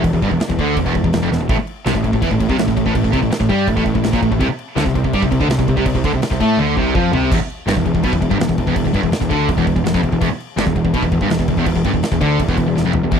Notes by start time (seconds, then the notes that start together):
0.04 E1 E2, kick, crash
0.13 E1 E2, kick
0.22 G1 G2, kick, crash
0.31 E1 E2, kick
0.40 muted overdriven electric guitar stroke, muted distorted electric guitar stroke, muted picked electric bass stroke, snare, crash
0.49 E1 E2, kick
0.58 D2 D3, kick, crash
0.76 E1 E2, kick, crash
0.86 E1 E2, kick
0.95 E1 E2, kick, crash
1.04 E1 E2, kick
1.13 E1 E2, snare, crash
1.22 F1 F2
1.31 E1 E2, snare
1.41 E1 E2
1.49 A1 A2, kick, crash
1.58 muted distorted electric guitar stroke, muted overdriven electric guitar stroke, muted picked electric bass stroke
1.67 crash
1.86 C2 C3, snare, crash
1.95 A1 A2, kick
2.03 A1 A2, kick, crash
2.12 A1 A2, kick
2.22 E2 E3, kick, crash
2.31 A1 A2, kick
2.40 A1 A2, kick, crash
2.49 C2 C3, kick
2.58 A1 A2, snare, crash
2.67 A1 A2, kick
2.76 A1 A2, kick, crash
2.86 A1 A2, kick
2.95 A1 A2, kick, crash
3.04 A1 A2, kick
3.13 C2 C3, kick, crash
3.22 A1 A2, kick
3.31 muted distorted electric guitar stroke, muted picked electric bass stroke, muted overdriven electric guitar stroke, snare, crash
3.40 A1 A2, kick
3.49 G2 G3, kick, crash
3.67 A1 A2, kick, crash
3.76 A1 A2, kick
3.85 A1 A2, kick, crash
3.94 A1 A2, kick
4.04 A1 A2, snare, crash
4.13 A#1 A#2, kick
4.22 A1 A2, kick, crash
4.31 A1 A2, kick
4.39 C2 C3, kick, crash
4.49 muted distorted electric guitar stroke, muted overdriven electric guitar stroke, muted picked electric bass stroke
4.59 crash
4.76 D2 D3, snare, crash
4.85 C2 C3, kick
4.94 C2 C3, kick, crash
5.04 C2 C3, kick
5.13 G2 G3, kick, crash
5.22 C2 C3, kick
5.31 C2 C3, kick, crash
5.41 D2 D3, kick
5.48 C2 C3, snare, crash
5.59 C2 C3, kick
5.68 C2 C3, kick, crash
5.77 C2 C3, kick
5.86 C2 C3, kick, crash
5.95 C2 C3, kick
6.04 D2 D3, kick, crash
6.13 C2 C3, kick
6.22 muted picked electric bass stroke, muted distorted electric guitar stroke, muted overdriven electric guitar stroke, snare, crash
6.31 C2 C3, kick
6.40 A2 A3, kick, crash
6.57 D2 D3, high tom
6.76 C2 C3, kick
6.95 F2 F3, kick
7.12 C2 C3, floor tom
7.31 E1 E2, kick, crash
7.39 muted picked electric bass stroke, muted overdriven electric guitar stroke, muted distorted electric guitar stroke
7.50 crash
7.67 G1 G2, snare, crash
7.76 E1 E2, kick
7.86 E1 E2, kick, crash
7.94 E1 E2, kick
8.03 B1 B2, kick, crash
8.12 E1 E2, kick
8.21 E1 E2, kick, crash
8.30 G1 G2, kick
8.39 E1 E2, snare, crash
8.48 E1 E2, kick
8.58 E1 E2, kick, crash
8.67 E1 E2, kick
8.75 E1 E2, kick, crash
8.85 E1 E2, kick
8.93 G1 G2, kick, crash
9.02 E1 E2, kick
9.12 muted distorted electric guitar stroke, muted picked electric bass stroke, muted overdriven electric guitar stroke, snare, crash
9.20 E1 E2, kick
9.29 D2 D3, kick, crash
9.48 E1 E2, kick, crash
9.57 E1 E2, kick
9.67 E1 E2, kick, crash
9.76 E1 E2, kick
9.85 E1 E2, snare, crash
9.94 F1 F2, kick
10.03 E1 E2, kick, crash
10.12 E1 E2, kick
10.21 E1 E2, kick, crash
10.30 muted distorted electric guitar stroke, muted picked electric bass stroke, muted overdriven electric guitar stroke
10.40 crash
10.57 G1 G2, snare, crash
10.66 E1 E2, kick
10.75 E1 E2, kick, crash
10.84 E1 E2, kick
10.93 B1 B2, kick, crash
11.02 E1 E2, kick
11.12 E1 E2, kick, crash
11.21 G1 G2, kick
11.30 E1 E2, snare, crash
11.39 E1 E2, kick
11.48 E1 E2, kick, crash
11.57 E1 E2, kick
11.66 E1 E2, kick, crash
11.75 E1 E2, kick
11.85 G1 G2, kick, crash
11.94 E1 E2, kick
12.03 muted distorted electric guitar stroke, muted picked electric bass stroke, muted overdriven electric guitar stroke, snare, crash
12.12 E1 E2, kick
12.21 D2 D3, kick, crash
12.39 E1 E2, kick, crash
12.48 E1 E2, kick
12.57 E1 E2, kick, crash
12.66 E1 E2
12.76 E1 E2, snare
12.85 F1 F2
12.93 E1 E2, floor tom
13.03 E1 E2
13.11 E1 E2, kick, crash